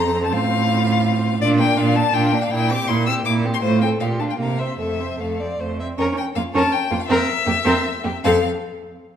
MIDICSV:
0, 0, Header, 1, 5, 480
1, 0, Start_track
1, 0, Key_signature, -1, "major"
1, 0, Tempo, 362100
1, 435, Time_signature, 3, 2, 24, 8
1, 2838, Tempo, 371747
1, 5238, Tempo, 397088
1, 7638, Tempo, 368777
1, 9558, Tempo, 385356
1, 11683, End_track
2, 0, Start_track
2, 0, Title_t, "Violin"
2, 0, Program_c, 0, 40
2, 0, Note_on_c, 0, 82, 110
2, 312, Note_off_c, 0, 82, 0
2, 320, Note_on_c, 0, 81, 103
2, 433, Note_on_c, 0, 77, 127
2, 453, Note_off_c, 0, 81, 0
2, 1864, Note_off_c, 0, 77, 0
2, 1872, Note_on_c, 0, 74, 126
2, 1969, Note_off_c, 0, 74, 0
2, 2103, Note_on_c, 0, 79, 127
2, 2348, Note_on_c, 0, 77, 112
2, 2368, Note_off_c, 0, 79, 0
2, 2593, Note_on_c, 0, 81, 127
2, 2613, Note_off_c, 0, 77, 0
2, 2833, Note_on_c, 0, 79, 107
2, 2853, Note_off_c, 0, 81, 0
2, 3199, Note_on_c, 0, 77, 100
2, 3218, Note_off_c, 0, 79, 0
2, 3308, Note_on_c, 0, 79, 118
2, 3327, Note_off_c, 0, 77, 0
2, 3560, Note_on_c, 0, 86, 127
2, 3580, Note_off_c, 0, 79, 0
2, 3787, Note_on_c, 0, 84, 109
2, 3806, Note_off_c, 0, 86, 0
2, 4019, Note_off_c, 0, 84, 0
2, 4027, Note_on_c, 0, 88, 118
2, 4126, Note_off_c, 0, 88, 0
2, 4273, Note_on_c, 0, 86, 103
2, 4376, Note_off_c, 0, 86, 0
2, 4643, Note_on_c, 0, 84, 107
2, 4690, Note_off_c, 0, 84, 0
2, 4755, Note_on_c, 0, 72, 98
2, 4991, Note_off_c, 0, 72, 0
2, 4998, Note_on_c, 0, 79, 100
2, 5094, Note_off_c, 0, 79, 0
2, 5241, Note_on_c, 0, 77, 78
2, 5332, Note_off_c, 0, 77, 0
2, 5471, Note_on_c, 0, 81, 93
2, 5517, Note_off_c, 0, 81, 0
2, 5604, Note_on_c, 0, 79, 68
2, 5647, Note_off_c, 0, 79, 0
2, 5708, Note_on_c, 0, 77, 83
2, 5948, Note_on_c, 0, 76, 79
2, 5967, Note_off_c, 0, 77, 0
2, 6181, Note_off_c, 0, 76, 0
2, 6188, Note_on_c, 0, 76, 84
2, 6689, Note_on_c, 0, 77, 67
2, 6707, Note_off_c, 0, 76, 0
2, 7169, Note_off_c, 0, 77, 0
2, 7635, Note_on_c, 0, 70, 99
2, 7734, Note_off_c, 0, 70, 0
2, 7885, Note_on_c, 0, 79, 108
2, 7983, Note_off_c, 0, 79, 0
2, 8117, Note_on_c, 0, 77, 98
2, 8215, Note_off_c, 0, 77, 0
2, 8362, Note_on_c, 0, 81, 117
2, 8594, Note_on_c, 0, 79, 101
2, 8614, Note_off_c, 0, 81, 0
2, 8961, Note_on_c, 0, 77, 112
2, 8981, Note_off_c, 0, 79, 0
2, 9059, Note_off_c, 0, 77, 0
2, 9067, Note_on_c, 0, 76, 127
2, 10494, Note_off_c, 0, 76, 0
2, 10527, Note_on_c, 0, 77, 102
2, 10794, Note_off_c, 0, 77, 0
2, 11683, End_track
3, 0, Start_track
3, 0, Title_t, "Violin"
3, 0, Program_c, 1, 40
3, 0, Note_on_c, 1, 69, 81
3, 385, Note_off_c, 1, 69, 0
3, 439, Note_on_c, 1, 65, 83
3, 1825, Note_off_c, 1, 65, 0
3, 1889, Note_on_c, 1, 65, 82
3, 2118, Note_on_c, 1, 62, 81
3, 2138, Note_off_c, 1, 65, 0
3, 2356, Note_on_c, 1, 65, 74
3, 2376, Note_off_c, 1, 62, 0
3, 2588, Note_on_c, 1, 62, 80
3, 2608, Note_off_c, 1, 65, 0
3, 2835, Note_off_c, 1, 62, 0
3, 2847, Note_on_c, 1, 65, 77
3, 3094, Note_on_c, 1, 62, 79
3, 3114, Note_off_c, 1, 65, 0
3, 3326, Note_off_c, 1, 62, 0
3, 3340, Note_on_c, 1, 64, 82
3, 3574, Note_on_c, 1, 67, 75
3, 3593, Note_off_c, 1, 64, 0
3, 3805, Note_on_c, 1, 64, 71
3, 3825, Note_off_c, 1, 67, 0
3, 4046, Note_on_c, 1, 67, 75
3, 4065, Note_off_c, 1, 64, 0
3, 4283, Note_off_c, 1, 67, 0
3, 4299, Note_on_c, 1, 64, 76
3, 4536, Note_on_c, 1, 67, 73
3, 4556, Note_off_c, 1, 64, 0
3, 4767, Note_off_c, 1, 67, 0
3, 4777, Note_on_c, 1, 65, 70
3, 5024, Note_on_c, 1, 69, 62
3, 5044, Note_off_c, 1, 65, 0
3, 5251, Note_off_c, 1, 69, 0
3, 5257, Note_on_c, 1, 67, 56
3, 5494, Note_on_c, 1, 65, 57
3, 5513, Note_off_c, 1, 67, 0
3, 5716, Note_off_c, 1, 65, 0
3, 5723, Note_on_c, 1, 70, 55
3, 5961, Note_on_c, 1, 72, 53
3, 5980, Note_off_c, 1, 70, 0
3, 6193, Note_off_c, 1, 72, 0
3, 6200, Note_on_c, 1, 69, 56
3, 6455, Note_on_c, 1, 72, 53
3, 6473, Note_off_c, 1, 69, 0
3, 6679, Note_off_c, 1, 72, 0
3, 6687, Note_on_c, 1, 69, 63
3, 6930, Note_on_c, 1, 74, 69
3, 6948, Note_off_c, 1, 69, 0
3, 7175, Note_on_c, 1, 72, 62
3, 7193, Note_off_c, 1, 74, 0
3, 7406, Note_off_c, 1, 72, 0
3, 7414, Note_on_c, 1, 76, 63
3, 7506, Note_off_c, 1, 76, 0
3, 7653, Note_on_c, 1, 70, 82
3, 7876, Note_off_c, 1, 70, 0
3, 8149, Note_on_c, 1, 65, 58
3, 8241, Note_off_c, 1, 65, 0
3, 8372, Note_on_c, 1, 70, 93
3, 8589, Note_off_c, 1, 70, 0
3, 8837, Note_on_c, 1, 65, 74
3, 8932, Note_off_c, 1, 65, 0
3, 9080, Note_on_c, 1, 70, 123
3, 9301, Note_off_c, 1, 70, 0
3, 9564, Note_on_c, 1, 67, 72
3, 9657, Note_off_c, 1, 67, 0
3, 9794, Note_on_c, 1, 70, 95
3, 10015, Note_off_c, 1, 70, 0
3, 10281, Note_on_c, 1, 67, 75
3, 10379, Note_off_c, 1, 67, 0
3, 10535, Note_on_c, 1, 69, 90
3, 10799, Note_off_c, 1, 69, 0
3, 11683, End_track
4, 0, Start_track
4, 0, Title_t, "Viola"
4, 0, Program_c, 2, 41
4, 0, Note_on_c, 2, 60, 80
4, 1824, Note_off_c, 2, 60, 0
4, 1874, Note_on_c, 2, 62, 93
4, 2113, Note_on_c, 2, 58, 83
4, 2133, Note_off_c, 2, 62, 0
4, 2354, Note_on_c, 2, 62, 78
4, 2374, Note_off_c, 2, 58, 0
4, 2598, Note_on_c, 2, 58, 79
4, 2618, Note_off_c, 2, 62, 0
4, 2837, Note_off_c, 2, 58, 0
4, 2845, Note_on_c, 2, 62, 78
4, 3082, Note_on_c, 2, 58, 70
4, 3101, Note_off_c, 2, 62, 0
4, 3315, Note_off_c, 2, 58, 0
4, 3323, Note_on_c, 2, 58, 81
4, 3568, Note_on_c, 2, 60, 71
4, 3588, Note_off_c, 2, 58, 0
4, 3810, Note_on_c, 2, 58, 79
4, 3829, Note_off_c, 2, 60, 0
4, 4047, Note_on_c, 2, 60, 72
4, 4066, Note_off_c, 2, 58, 0
4, 4278, Note_off_c, 2, 60, 0
4, 4286, Note_on_c, 2, 58, 70
4, 4522, Note_on_c, 2, 60, 66
4, 4541, Note_off_c, 2, 58, 0
4, 4750, Note_off_c, 2, 60, 0
4, 4758, Note_on_c, 2, 57, 72
4, 5000, Note_on_c, 2, 60, 65
4, 5020, Note_off_c, 2, 57, 0
4, 5240, Note_off_c, 2, 60, 0
4, 5249, Note_on_c, 2, 65, 60
4, 5474, Note_on_c, 2, 62, 59
4, 5492, Note_off_c, 2, 65, 0
4, 5695, Note_off_c, 2, 62, 0
4, 5703, Note_on_c, 2, 58, 56
4, 5947, Note_on_c, 2, 60, 50
4, 5965, Note_off_c, 2, 58, 0
4, 6189, Note_off_c, 2, 60, 0
4, 6198, Note_on_c, 2, 57, 52
4, 6448, Note_on_c, 2, 60, 47
4, 6466, Note_off_c, 2, 57, 0
4, 6692, Note_on_c, 2, 57, 52
4, 6710, Note_off_c, 2, 60, 0
4, 6933, Note_on_c, 2, 60, 47
4, 6951, Note_off_c, 2, 57, 0
4, 7159, Note_off_c, 2, 60, 0
4, 7167, Note_on_c, 2, 57, 50
4, 7414, Note_on_c, 2, 60, 49
4, 7432, Note_off_c, 2, 57, 0
4, 7619, Note_off_c, 2, 60, 0
4, 7626, Note_on_c, 2, 61, 85
4, 7861, Note_off_c, 2, 61, 0
4, 8121, Note_on_c, 2, 58, 76
4, 8218, Note_off_c, 2, 58, 0
4, 8362, Note_on_c, 2, 61, 99
4, 8584, Note_off_c, 2, 61, 0
4, 8838, Note_on_c, 2, 58, 78
4, 8933, Note_off_c, 2, 58, 0
4, 9068, Note_on_c, 2, 60, 103
4, 9294, Note_off_c, 2, 60, 0
4, 9557, Note_on_c, 2, 58, 83
4, 9651, Note_off_c, 2, 58, 0
4, 9785, Note_on_c, 2, 60, 106
4, 10010, Note_off_c, 2, 60, 0
4, 10279, Note_on_c, 2, 58, 65
4, 10378, Note_off_c, 2, 58, 0
4, 10540, Note_on_c, 2, 60, 86
4, 10802, Note_off_c, 2, 60, 0
4, 11683, End_track
5, 0, Start_track
5, 0, Title_t, "Cello"
5, 0, Program_c, 3, 42
5, 0, Note_on_c, 3, 41, 85
5, 430, Note_on_c, 3, 45, 97
5, 450, Note_off_c, 3, 41, 0
5, 1874, Note_off_c, 3, 45, 0
5, 1882, Note_on_c, 3, 46, 104
5, 2302, Note_off_c, 3, 46, 0
5, 2355, Note_on_c, 3, 46, 104
5, 2780, Note_off_c, 3, 46, 0
5, 2837, Note_on_c, 3, 46, 94
5, 3260, Note_off_c, 3, 46, 0
5, 3312, Note_on_c, 3, 46, 100
5, 3737, Note_off_c, 3, 46, 0
5, 3793, Note_on_c, 3, 46, 90
5, 4220, Note_off_c, 3, 46, 0
5, 4277, Note_on_c, 3, 46, 89
5, 4701, Note_off_c, 3, 46, 0
5, 4756, Note_on_c, 3, 45, 94
5, 5180, Note_off_c, 3, 45, 0
5, 5239, Note_on_c, 3, 46, 75
5, 5647, Note_off_c, 3, 46, 0
5, 5710, Note_on_c, 3, 48, 69
5, 6132, Note_off_c, 3, 48, 0
5, 6187, Note_on_c, 3, 41, 67
5, 6620, Note_off_c, 3, 41, 0
5, 6675, Note_on_c, 3, 41, 62
5, 7106, Note_off_c, 3, 41, 0
5, 7162, Note_on_c, 3, 41, 62
5, 7584, Note_off_c, 3, 41, 0
5, 7634, Note_on_c, 3, 41, 91
5, 7733, Note_off_c, 3, 41, 0
5, 8128, Note_on_c, 3, 41, 68
5, 8224, Note_off_c, 3, 41, 0
5, 8366, Note_on_c, 3, 41, 94
5, 8460, Note_off_c, 3, 41, 0
5, 8846, Note_on_c, 3, 41, 81
5, 8939, Note_off_c, 3, 41, 0
5, 9079, Note_on_c, 3, 41, 114
5, 9174, Note_off_c, 3, 41, 0
5, 9566, Note_on_c, 3, 41, 81
5, 9658, Note_off_c, 3, 41, 0
5, 9797, Note_on_c, 3, 41, 108
5, 9891, Note_off_c, 3, 41, 0
5, 10288, Note_on_c, 3, 41, 70
5, 10385, Note_off_c, 3, 41, 0
5, 10529, Note_on_c, 3, 41, 99
5, 10796, Note_off_c, 3, 41, 0
5, 11683, End_track
0, 0, End_of_file